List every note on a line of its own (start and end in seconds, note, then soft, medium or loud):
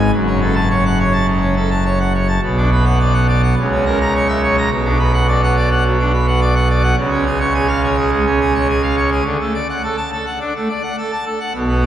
0.00 0.11 G#1 medium
0.00 0.11 G#2 medium
0.00 0.11 G#5 medium
0.12 2.39 F#1 medium
0.12 2.38 F#2 medium
0.27 0.40 C#4 medium
0.41 0.55 A4 medium
0.55 0.69 A5 loud
0.70 0.84 C#5 medium
0.85 0.99 F#5 medium
1.00 1.13 C#5 medium
1.13 1.26 A5 medium
1.27 1.40 C#3 medium
1.41 1.55 C#4 medium
1.56 1.70 A4 medium
1.71 1.84 A5 medium
1.86 1.99 C#5 medium
2.00 2.13 F#5 medium
2.14 2.27 C#5 medium
2.28 2.41 A5 medium
2.43 3.54 B1 medium
2.43 3.54 B2 loud
2.57 2.70 D4 medium
2.72 2.85 B4 medium
2.85 2.98 F#5 loud
3.01 3.13 D5 medium
3.14 3.27 F#5 medium
3.28 3.41 D5 medium
3.43 3.55 F#5 medium
3.58 4.68 C#2 loud
3.58 4.69 C#3 loud
3.72 3.84 C#4 medium
3.86 3.99 A#4 medium
4.01 4.13 A#5 loud
4.15 4.28 C#5 medium
4.29 4.41 E5 loud
4.44 4.56 C#5 medium
4.58 4.70 A#5 medium
4.71 6.94 B1 loud
4.71 6.94 B2 medium
4.85 4.98 D4 medium
4.99 5.12 B4 medium
5.14 5.27 F#5 loud
5.28 5.41 D5 medium
5.44 5.56 F#5 medium
5.56 5.69 D5 loud
5.71 5.84 F#5 medium
5.86 5.98 F#3 medium
6.00 6.12 D4 medium
6.13 6.26 B4 medium
6.28 6.40 F#5 medium
6.41 6.54 D5 medium
6.55 6.68 F#5 medium
6.70 6.83 D5 medium
6.83 6.96 F#5 medium
6.97 9.21 C#2 loud
6.97 9.21 C#3 loud
7.12 7.25 C#4 medium
7.26 7.39 G#4 medium
7.40 7.53 C#5 medium
7.54 7.67 G#4 medium
7.68 7.81 F5 loud
7.83 7.96 C#5 loud
7.97 8.10 G#4 medium
8.12 8.25 G#3 medium
8.26 8.39 C#4 medium
8.41 8.53 G#4 medium
8.54 8.67 C#5 medium
8.69 8.82 G#4 medium
8.82 8.95 F5 loud
8.97 9.10 C#5 medium
9.12 9.24 G#4 medium
9.25 9.37 D2 loud
9.25 9.37 D3 loud
9.41 9.53 A3 medium
9.54 9.67 D5 medium
9.70 9.82 F#5 medium
9.83 9.96 A4 medium
9.97 10.10 A5 loud
10.13 10.25 A4 medium
10.26 10.39 F#5 medium
10.40 10.53 D4 medium
10.56 10.68 A3 medium
10.70 10.82 D5 medium
10.83 10.96 F#5 medium
10.98 11.11 A4 medium
11.11 11.25 A5 medium
11.25 11.39 A4 medium
11.40 11.53 F#5 medium
11.54 11.86 B1 medium
11.54 11.86 B2 medium
11.69 11.82 B3 medium